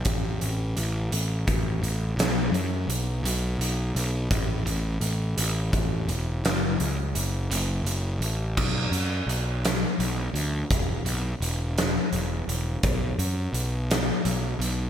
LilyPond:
<<
  \new Staff \with { instrumentName = "Picked electric bass" } { \clef bass \time 6/8 \key b \minor \tempo 4. = 56 a,,8 a,,8 a,,8 a,,8 a,,8 a,,8 | b,,8 fis,8 b,,8 b,,8 b,,8 b,,8 | a,,8 a,,8 a,,8 a,,8 a,,8 e,,8 | fis,,8 cis,8 fis,,8 fis,,8 fis,,8 a,,8 |
b,,8 fis,8 b,,4 b,,8 d,8 | e,,8 b,,8 e,,4 e,,8 e,,8 | b,,8 fis,8 b,,4 b,,8 b,,8 | }
  \new DrumStaff \with { instrumentName = "Drums" } \drummode { \time 6/8 <hh bd>8 hh8 hh8 hh8 <hh bd>8 hh8 | <hh sn>8 hh8 hh8 hh8 hh8 hh8 | <hh bd>8 hh8 hh8 hh8 <hh bd>8 hh8 | <hh sn>8 hh8 hh8 hh8 hh8 hh8 |
<cymc bd>8 hh8 hh8 <hh sn>8 hh8 hh8 | <hh bd>8 hh8 hh8 <hh sn>8 hh8 hh8 | <hh bd>8 hh8 hh8 <hh sn>8 hh8 hh8 | }
>>